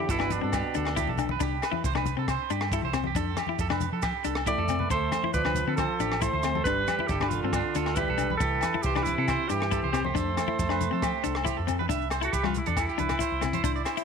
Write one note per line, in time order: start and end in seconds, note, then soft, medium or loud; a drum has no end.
0.00 0.12 D3 medium
0.00 0.14 E4 medium
0.00 0.12 G4 loud
0.09 0.38 G1 medium
0.09 0.32 B2 medium
0.09 0.34 E4 medium
0.09 0.20 A4 medium
0.09 kick medium
0.09 maracas medium
0.19 0.35 D4 medium
0.19 0.42 B4 medium
0.19 cross-stick medium
0.19 low agogo medium
0.30 1.19 B2 medium
0.30 1.19 D4 medium
0.30 closed hi-hat medium
0.30 high conga medium
0.30 low conga medium
0.30 maracas medium
0.41 0.62 G2 loud
0.41 0.57 C4 medium
0.41 0.53 A4 medium
0.53 0.74 G4 medium
0.53 kick medium
0.53 cross-stick medium
0.53 low agogo medium
0.53 maracas medium
0.74 1.04 D2 medium
0.74 0.90 D4 medium
0.74 0.96 A4 medium
0.74 closed hi-hat medium
0.74 maracas medium
0.85 cross-stick medium
0.85 low agogo medium
0.96 1.11 E4 medium
0.96 1.08 G4 medium
0.96 kick medium
0.96 maracas medium
1.07 1.36 B1 medium
1.07 1.29 A4 medium
1.07 high conga medium
1.18 1.34 D4 medium
1.18 closed hi-hat soft
1.18 low conga medium
1.18 low agogo medium
1.18 maracas medium
1.29 1.41 B4 medium
1.29 high conga medium
1.40 1.59 C2 medium
1.40 1.55 D4 loud
1.40 1.62 G4 medium
1.40 kick medium
1.40 maracas medium
1.62 1.84 B4 medium
1.62 cross-stick medium
1.62 closed hi-hat soft
1.62 low agogo medium
1.62 maracas medium
1.72 1.87 E4 medium
1.72 high conga medium
1.84 2.13 C2 loud
1.84 1.96 C5 medium
1.84 kick medium
1.84 maracas medium
1.95 2.10 D4 medium
1.95 2.17 B4 medium
1.95 cross-stick medium
1.95 low conga medium
1.95 low agogo medium
2.06 closed hi-hat soft
2.06 high conga medium
2.06 low conga medium
2.06 maracas medium
2.17 2.37 C3 loud
2.17 2.32 C4 medium
2.17 2.28 A4 medium
2.28 2.50 C5 medium
2.28 kick medium
2.28 cross-stick medium
2.28 low agogo medium
2.28 maracas medium
2.50 2.79 G2 medium
2.50 2.65 D4 medium
2.50 2.71 G4 medium
2.50 closed hi-hat soft
2.50 maracas medium
2.61 cross-stick medium
2.61 low agogo medium
2.72 2.88 E4 medium
2.72 2.83 A4 medium
2.72 kick medium
2.72 maracas medium
2.82 3.11 C2 loud
2.82 3.05 C5 medium
2.82 high conga medium
2.93 3.09 C4 medium
2.93 cross-stick medium
2.93 closed hi-hat soft
2.93 low conga medium
2.93 low agogo medium
2.93 maracas medium
3.04 3.16 G4 medium
3.04 high conga medium
3.15 3.34 F2 loud
3.15 3.31 D4 medium
3.15 3.37 A4 loud
3.15 kick medium
3.15 maracas medium
3.36 3.59 G4 medium
3.36 cross-stick medium
3.36 closed hi-hat soft
3.36 high conga medium
3.36 low agogo medium
3.36 maracas medium
3.47 3.64 E4 medium
3.47 high conga medium
3.59 3.88 F2 loud
3.59 3.71 A4 medium
3.59 kick medium
3.59 maracas medium
3.70 3.85 D4 medium
3.70 3.92 B4 medium
3.70 cross-stick medium
3.70 low conga medium
3.70 low agogo medium
3.80 closed hi-hat medium
3.80 high conga medium
3.80 low conga medium
3.80 maracas medium
3.92 4.11 F3 medium
3.92 4.03 A4 medium
4.02 4.24 G4 medium
4.02 kick medium
4.02 cross-stick medium
4.02 low agogo medium
4.02 maracas medium
4.24 4.54 C2 medium
4.24 4.40 D4 medium
4.24 4.46 A4 medium
4.24 closed hi-hat medium
4.24 maracas medium
4.35 cross-stick medium
4.35 low agogo medium
4.46 4.88 A3 medium
4.46 4.62 E4 medium
4.46 4.58 G4 medium
4.46 4.88 D5 loud
4.46 kick medium
4.46 high conga medium
4.46 maracas medium
4.58 4.86 F2 medium
4.58 4.79 A4 medium
4.58 high conga medium
4.68 4.85 C4 medium
4.68 closed hi-hat soft
4.68 low conga medium
4.68 low agogo medium
4.68 maracas medium
4.79 4.90 B4 medium
4.79 low conga medium
4.90 5.10 D2 medium
4.90 5.31 A3 medium
4.90 5.12 A4 medium
4.90 5.32 C5 loud
4.90 muted clean electric guitar stroke medium
4.90 kick medium
4.90 maracas medium
5.12 5.34 C5 medium
5.12 cross-stick medium
5.12 closed hi-hat soft
5.12 high conga medium
5.12 low agogo medium
5.12 maracas medium
5.23 5.39 E4 medium
5.23 high conga medium
5.33 5.63 D2 loud
5.33 5.74 F3 medium
5.33 5.75 B4 loud
5.33 5.45 D5 medium
5.33 kick medium
5.33 maracas medium
5.45 5.60 D4 medium
5.45 5.66 B4 medium
5.45 cross-stick medium
5.45 low conga medium
5.45 low agogo medium
5.55 closed hi-hat medium
5.55 high conga medium
5.55 low conga medium
5.55 maracas medium
5.67 5.86 D3 medium
5.67 5.82 C4 medium
5.67 5.78 A4 medium
5.76 6.22 F3 medium
5.76 6.23 A4 medium
5.76 5.99 C5 medium
5.76 kick medium
5.76 cross-stick medium
5.76 low agogo medium
5.76 maracas medium
5.99 6.28 A1 medium
5.99 6.15 D4 medium
5.99 6.21 G4 medium
5.99 closed hi-hat soft
5.99 maracas medium
6.12 cross-stick medium
6.12 low agogo medium
6.20 6.64 A3 medium
6.20 6.37 E4 medium
6.20 6.33 A4 medium
6.20 6.63 C5 loud
6.20 kick medium
6.20 maracas medium
6.33 6.61 D2 medium
6.33 6.54 C5 medium
6.33 high conga medium
6.43 6.59 C4 medium
6.43 cross-stick medium
6.43 closed hi-hat soft
6.43 low agogo medium
6.43 maracas medium
6.55 6.65 A4 medium
6.55 high conga medium
6.64 6.85 G1 medium
6.64 7.09 G3 medium
6.64 6.81 D4 loud
6.64 7.08 B4 loud
6.64 6.87 B4 medium
6.64 kick medium
6.64 maracas medium
6.87 7.09 G4 medium
6.87 cross-stick medium
6.87 closed hi-hat medium
6.87 high conga medium
6.87 low agogo medium
6.87 maracas medium
6.99 7.14 E4 medium
6.99 high conga medium
7.07 7.38 G1 loud
7.07 7.30 D3 medium
7.07 7.30 G4 loud
7.07 7.21 A4 medium
7.07 kick medium
7.07 maracas medium
7.20 7.37 D4 medium
7.20 7.42 B4 medium
7.20 cross-stick medium
7.20 low conga medium
7.20 low agogo medium
7.29 7.96 D3 medium
7.29 7.97 F4 medium
7.29 closed hi-hat soft
7.29 high conga medium
7.29 low conga medium
7.29 maracas medium
7.42 7.61 G2 medium
7.42 7.59 C4 medium
7.42 7.53 A4 medium
7.53 7.75 D4 medium
7.53 kick medium
7.53 cross-stick medium
7.53 low agogo medium
7.53 maracas medium
7.75 8.04 D2 medium
7.75 7.90 D4 medium
7.75 7.97 A4 medium
7.75 closed hi-hat medium
7.75 maracas medium
7.86 cross-stick medium
7.86 low agogo medium
7.95 8.38 G3 medium
7.95 8.12 E4 medium
7.95 8.08 G4 medium
7.95 8.37 B4 medium
7.95 kick medium
7.95 maracas medium
8.08 8.37 B1 medium
8.08 8.30 A4 medium
8.08 high conga medium
8.18 8.33 D4 medium
8.18 closed hi-hat medium
8.18 low conga medium
8.18 low agogo medium
8.18 maracas medium
8.30 8.41 B4 medium
8.30 high conga medium
8.37 8.59 C2 loud
8.37 8.84 E3 medium
8.37 8.84 A4 loud
8.37 muted clean electric guitar stroke medium
8.37 kick medium
8.37 maracas medium
8.42 8.62 G4 medium
8.61 8.84 B4 medium
8.61 cross-stick medium
8.61 closed hi-hat medium
8.61 high conga medium
8.61 low agogo medium
8.61 maracas medium
8.74 8.89 E4 medium
8.74 high conga medium
8.82 9.13 C2 medium
8.82 9.07 E3 medium
8.82 9.04 G4 medium
8.82 8.96 C5 medium
8.82 kick medium
8.82 maracas loud
8.95 9.10 D4 medium
8.95 9.17 B4 medium
8.95 cross-stick medium
8.95 low conga medium
8.95 low agogo medium
9.03 9.51 C3 medium
9.03 9.49 E4 medium
9.03 maracas medium
9.07 closed hi-hat medium
9.07 high conga medium
9.07 low conga medium
9.18 9.36 C3 loud
9.18 9.33 C4 medium
9.18 9.28 A4 medium
9.28 9.50 C5 loud
9.28 kick medium
9.28 cross-stick medium
9.28 low agogo medium
9.28 maracas medium
9.48 9.79 G2 medium
9.48 9.92 E3 medium
9.48 9.65 D4 medium
9.48 9.92 G4 medium
9.48 closed hi-hat soft
9.48 maracas medium
9.52 9.72 G4 medium
9.60 cross-stick medium
9.60 low agogo medium
9.71 9.86 E4 medium
9.71 9.83 A4 medium
9.71 kick medium
9.71 maracas medium
9.83 10.12 C2 medium
9.83 10.04 C5 medium
9.83 high conga medium
9.92 10.04 E3 medium
9.92 10.08 C4 medium
9.92 10.03 G4 medium
9.92 cross-stick medium
9.92 closed hi-hat soft
9.92 low conga medium
9.92 low agogo medium
9.92 maracas medium
10.04 11.64 A3 medium
10.04 10.15 G4 medium
10.04 11.64 C5 medium
10.04 high conga medium
10.15 10.34 F2 loud
10.15 10.30 D4 loud
10.15 10.36 A4 medium
10.15 kick medium
10.15 maracas medium
10.37 10.59 A4 medium
10.37 cross-stick medium
10.37 closed hi-hat soft
10.37 high conga medium
10.37 low agogo medium
10.37 maracas medium
10.48 10.63 E4 medium
10.48 high conga medium
10.59 10.88 F2 loud
10.59 10.70 A4 medium
10.59 kick medium
10.59 maracas medium
10.69 10.84 D4 medium
10.69 10.91 B4 medium
10.69 cross-stick medium
10.69 low agogo medium
10.81 closed hi-hat medium
10.81 high conga medium
10.81 low conga medium
10.81 maracas medium
10.91 11.11 F3 loud
10.91 11.06 C4 medium
10.91 11.02 A4 medium
11.02 11.23 G4 medium
11.02 kick medium
11.02 cross-stick medium
11.02 low agogo medium
11.02 maracas medium
11.24 11.53 C2 medium
11.24 11.39 D4 medium
11.24 11.45 A4 medium
11.24 closed hi-hat medium
11.24 maracas medium
11.35 cross-stick medium
11.35 low agogo medium
11.45 11.60 E4 medium
11.45 11.56 G4 medium
11.45 kick medium
11.45 maracas medium
11.57 11.86 F2 medium
11.57 11.78 A4 medium
11.67 11.82 C4 medium
11.67 closed hi-hat soft
11.67 low conga medium
11.67 low agogo medium
11.67 maracas medium
11.79 11.89 B4 medium
11.79 high conga medium
11.89 12.27 C2 medium
11.89 12.04 D4 medium
11.89 12.10 E5 medium
11.89 kick medium
11.89 closed hi-hat soft
11.89 maracas medium
12.02 maracas soft
12.10 12.22 C5 medium
12.10 cross-stick medium
12.10 closed hi-hat medium
12.10 low agogo medium
12.10 maracas medium
12.21 12.37 E4 medium
12.21 12.34 F#4 medium
12.21 12.33 A4 medium
12.21 closed hi-hat medium
12.21 maracas soft
12.32 12.62 C2 medium
12.32 12.48 G4 medium
12.32 12.54 B4 medium
12.32 kick medium
12.32 closed hi-hat medium
12.32 maracas medium
12.43 12.59 G3 medium
12.43 12.59 F4 medium
12.43 cross-stick medium
12.43 high conga medium
12.43 low agogo medium
12.54 12.69 E4 medium
12.54 closed hi-hat soft
12.54 low conga medium
12.54 maracas medium
12.66 12.86 E2 medium
12.66 12.81 D4 medium
12.66 12.87 A4 medium
12.66 closed hi-hat medium
12.66 high conga medium
12.66 maracas soft
12.77 14.04 E4 medium
12.77 kick medium
12.77 cross-stick medium
12.77 closed hi-hat soft
12.77 low agogo medium
12.77 maracas medium
12.89 12.99 G4 medium
12.89 maracas soft
12.98 13.18 C2 medium
12.98 13.13 D4 medium
12.98 13.20 B4 medium
12.98 closed hi-hat medium
12.98 high conga medium
12.98 maracas medium
13.09 cross-stick medium
13.09 closed hi-hat soft
13.09 low conga medium
13.09 low agogo medium
13.19 13.34 E4 medium
13.19 13.42 C5 medium
13.19 kick medium
13.19 closed hi-hat soft
13.19 maracas medium
13.32 13.59 C2 medium
13.41 13.56 C4 medium
13.41 cross-stick medium
13.41 closed hi-hat soft
13.41 low conga medium
13.41 low agogo medium
13.41 maracas medium
13.53 13.64 C5 medium
13.53 kick medium
13.53 closed hi-hat soft
13.53 high conga medium
13.53 maracas soft
13.64 13.83 C2 loud
13.64 13.79 D4 medium
13.64 13.75 C5 medium
13.64 kick medium
13.64 closed hi-hat soft
13.64 maracas loud
13.76 13.85 D5 medium
13.76 maracas soft
13.85 14.04 C5 medium
13.85 cross-stick medium
13.85 closed hi-hat soft
13.85 low agogo medium
13.85 maracas medium
13.97 14.04 E4 medium
13.97 closed hi-hat soft
13.97 maracas soft